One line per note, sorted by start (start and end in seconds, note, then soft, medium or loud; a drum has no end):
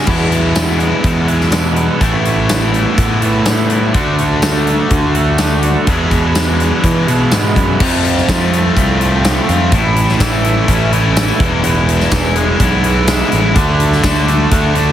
0.06 1.27 E2 medium
0.06 2.00 E2 medium
0.06 0.91 E2 medium
0.06 1.27 B2 medium
0.06 1.99 B2 medium
0.06 1.27 E3 medium
0.06 1.99 E3 medium
0.06 1.27 G#3 loud
0.06 2.01 G#3 medium
0.06 1.28 B3 medium
0.06 2.01 B3 medium
0.06 1.26 E4 loud
0.06 2.01 E4 medium
0.06 kick loud
0.06 crash loud
0.32 closed hi-hat medium
0.56 snare loud
0.56 closed hi-hat medium
0.56 tambourine loud
0.80 closed hi-hat medium
1.04 1.88 E2 loud
1.04 kick medium
1.04 closed hi-hat medium
1.27 1.50 E2 medium
1.27 1.51 B2 medium
1.27 1.51 E3 medium
1.27 1.51 G#3 medium
1.27 1.53 B3 medium
1.27 1.51 E4 medium
1.27 closed hi-hat medium
1.41 snare soft
1.51 1.99 E2 medium
1.51 1.99 B2 medium
1.51 2.00 E3 medium
1.51 2.00 G#3 medium
1.51 2.01 B3 medium
1.51 2.00 E4 medium
1.51 snare loud
1.51 closed hi-hat medium
1.51 tambourine loud
1.76 closed hi-hat medium
2.00 2.85 A1 medium
2.00 3.20 A2 medium
2.00 3.93 A2 medium
2.00 3.93 E3 medium
2.00 3.21 E3 medium
2.00 3.93 A3 medium
2.00 3.21 A3 medium
2.00 3.95 B3 loud
2.00 3.21 B3 loud
2.00 3.94 E4 medium
2.00 3.20 E4 loud
2.00 kick loud
2.00 closed hi-hat medium
2.25 closed hi-hat medium
2.49 snare loud
2.49 closed hi-hat loud
2.49 tambourine loud
2.74 closed hi-hat medium
2.98 3.95 A2 loud
2.98 kick medium
2.98 closed hi-hat loud
3.21 3.44 A2 medium
3.21 3.45 E3 medium
3.21 3.45 A3 medium
3.21 3.47 B3 medium
3.21 3.44 E4 medium
3.21 closed hi-hat medium
3.46 3.93 A2 medium
3.46 3.93 E3 medium
3.46 3.93 A3 medium
3.46 3.95 B3 medium
3.46 3.94 E4 medium
3.46 snare loud
3.46 closed hi-hat medium
3.46 tambourine loud
3.70 closed hi-hat medium
3.94 4.78 D2 loud
3.94 5.13 D3 medium
3.94 5.86 D3 medium
3.94 5.14 A3 loud
3.94 5.86 A3 medium
3.94 5.87 D4 loud
3.94 5.14 D4 loud
3.94 5.87 F#4 medium
3.94 5.13 F#4 medium
3.94 kick loud
3.94 closed hi-hat medium
4.18 closed hi-hat medium
4.42 snare loud
4.42 closed hi-hat medium
4.42 tambourine loud
4.67 closed hi-hat medium
4.90 5.74 D2 loud
4.90 kick medium
4.90 closed hi-hat medium
5.14 5.38 D3 medium
5.14 5.39 A3 medium
5.14 5.38 D4 medium
5.14 5.37 F#4 medium
5.14 closed hi-hat medium
5.38 5.86 D3 medium
5.38 5.87 A3 medium
5.38 5.87 D4 medium
5.38 5.87 F#4 medium
5.38 snare loud
5.38 closed hi-hat medium
5.38 tambourine loud
5.63 closed hi-hat medium
5.87 7.06 E2 loud
5.87 7.78 E2 medium
5.87 6.71 E2 medium
5.87 7.06 B2 loud
5.87 7.79 B2 loud
5.87 7.07 E3 medium
5.87 7.79 E3 medium
5.87 7.07 G#3 loud
5.87 7.79 G#3 medium
5.87 7.07 B3 loud
5.87 7.80 B3 loud
5.87 7.07 E4 loud
5.87 7.80 G#4 medium
5.87 kick loud
5.87 closed hi-hat medium
6.11 kick medium
6.11 closed hi-hat medium
6.35 snare loud
6.35 closed hi-hat medium
6.35 tambourine loud
6.60 closed hi-hat medium
6.84 7.05 E3 loud
6.84 kick medium
6.84 closed hi-hat loud
7.08 7.31 E2 medium
7.08 7.30 B2 medium
7.08 7.31 B2 medium
7.08 7.31 E3 medium
7.08 7.31 G#3 medium
7.08 7.31 B3 medium
7.08 7.31 E4 medium
7.08 closed hi-hat medium
7.32 7.79 E2 medium
7.32 7.54 G#2 medium
7.32 7.79 B2 medium
7.32 7.79 E3 medium
7.32 7.79 G#3 medium
7.32 7.80 B3 medium
7.32 7.80 E4 medium
7.32 snare loud
7.32 closed hi-hat loud
7.32 tambourine loud
7.56 7.78 F#2 medium
7.56 kick medium
7.56 closed hi-hat medium
7.80 8.52 F2 medium
7.80 8.22 F2 medium
7.80 9.00 F2 medium
7.80 8.53 C3 loud
7.80 8.27 F3 medium
7.80 8.29 A3 medium
7.80 8.28 C4 medium
7.80 8.29 F4 medium
7.80 kick loud
7.80 crash loud
8.05 closed hi-hat medium
8.18 snare soft
8.28 8.70 F2 loud
8.28 8.53 F3 medium
8.28 8.99 F3 medium
8.28 8.53 A3 medium
8.28 8.52 C4 medium
8.28 8.51 F4 medium
8.28 kick medium
8.28 snare loud
8.28 closed hi-hat loud
8.28 tambourine loud
8.52 9.01 F3 medium
8.52 9.23 A3 medium
8.52 9.00 A3 medium
8.52 9.00 C4 medium
8.52 8.99 F4 medium
8.52 closed hi-hat medium
8.77 9.38 C2 loud
8.77 9.73 C4 medium
8.77 kick medium
8.77 closed hi-hat loud
9.00 9.72 F3 medium
9.00 9.49 F3 medium
9.00 9.48 A3 medium
9.00 9.48 C4 medium
9.00 9.47 F4 medium
9.00 closed hi-hat medium
9.24 9.72 A3 medium
9.24 snare loud
9.24 closed hi-hat loud
9.24 tambourine loud
9.49 9.69 F2 medium
9.49 9.72 F3 medium
9.49 9.71 A3 medium
9.49 9.71 C4 medium
9.49 9.71 F4 medium
9.49 9.72 F4 medium
9.49 closed hi-hat medium
9.72 10.13 A1 loud
9.72 10.44 A2 medium
9.72 10.92 A2 medium
9.72 10.19 E3 medium
9.72 10.20 A3 loud
9.72 10.20 C#4 loud
9.72 10.22 E4 loud
9.72 kick loud
9.72 closed hi-hat loud
9.96 closed hi-hat medium
10.09 snare soft
10.20 10.61 A1 loud
10.20 11.41 E3 medium
10.20 10.91 E3 medium
10.20 10.45 A3 medium
10.20 10.44 C#4 loud
10.20 10.44 E4 loud
10.20 kick medium
10.20 snare loud
10.20 closed hi-hat loud
10.20 tambourine loud
10.44 11.15 A3 medium
10.44 10.92 A3 medium
10.44 10.92 C#4 medium
10.44 10.90 E4 medium
10.44 closed hi-hat medium
10.68 11.30 A1 loud
10.68 11.40 C#4 medium
10.68 kick medium
10.68 closed hi-hat loud
10.92 11.40 E3 medium
10.92 11.39 A3 medium
10.92 11.39 C#4 medium
10.92 11.38 E4 medium
10.92 closed hi-hat medium
11.16 11.40 A3 medium
11.16 snare loud
11.16 closed hi-hat medium
11.16 tambourine loud
11.40 11.60 E1 loud
11.40 11.62 E2 medium
11.40 11.62 B2 medium
11.40 11.62 E3 medium
11.40 11.63 G#3 medium
11.40 11.63 B3 medium
11.40 11.63 E4 medium
11.40 kick loud
11.40 closed hi-hat medium
11.63 12.05 E1 medium
11.63 12.35 E2 medium
11.63 12.83 E2 medium
11.63 12.35 B2 loud
11.63 12.10 E3 loud
11.63 12.11 G#3 medium
11.63 12.12 B3 loud
11.63 12.12 E4 loud
11.63 closed hi-hat loud
11.88 closed hi-hat medium
12.00 snare soft
12.11 12.53 E1 loud
12.11 12.36 E3 medium
12.11 12.82 E3 medium
12.11 12.35 G#3 medium
12.11 12.35 B3 medium
12.11 12.34 E4 medium
12.11 kick medium
12.11 snare loud
12.11 closed hi-hat loud
12.11 tambourine loud
12.35 12.84 E3 medium
12.35 13.06 G#3 medium
12.35 12.84 G#3 medium
12.35 12.83 B3 medium
12.35 12.82 E4 medium
12.35 closed hi-hat medium
12.60 13.22 B1 loud
12.60 13.55 B3 medium
12.60 kick medium
12.60 closed hi-hat loud
12.83 13.55 E3 medium
12.83 13.32 E3 medium
12.83 13.31 G#3 medium
12.83 13.31 B3 medium
12.83 13.30 E4 medium
12.83 closed hi-hat medium
13.07 13.55 G#3 medium
13.07 snare loud
13.07 closed hi-hat medium
13.07 tambourine loud
13.31 13.53 A1 loud
13.31 13.54 E3 medium
13.31 13.54 G#3 medium
13.31 13.54 B3 medium
13.31 13.54 E4 medium
13.31 13.55 E4 medium
13.31 closed hi-hat medium
13.55 13.97 D2 loud
13.55 14.02 D3 loud
13.55 14.02 D3 medium
13.55 14.03 A3 loud
13.55 14.03 D4 medium
13.55 14.04 F#4 loud
13.55 kick loud
13.55 closed hi-hat loud
13.80 closed hi-hat medium
13.93 snare soft
14.03 14.45 D2 medium
14.03 14.51 D3 medium
14.03 14.73 D3 medium
14.03 14.29 A3 medium
14.03 14.27 D4 medium
14.03 14.26 F#4 loud
14.03 kick medium
14.03 snare loud
14.03 closed hi-hat loud
14.03 tambourine loud
14.27 14.92 A3 medium
14.27 14.77 A3 medium
14.27 14.75 D4 medium
14.27 14.74 F#4 medium
14.27 closed hi-hat medium
14.51 14.92 D2 loud
14.51 14.92 D4 medium
14.51 kick medium
14.51 closed hi-hat loud
14.74 14.92 D3 medium
14.74 14.92 A3 medium
14.74 14.92 D4 medium
14.74 14.92 F#4 medium
14.74 closed hi-hat medium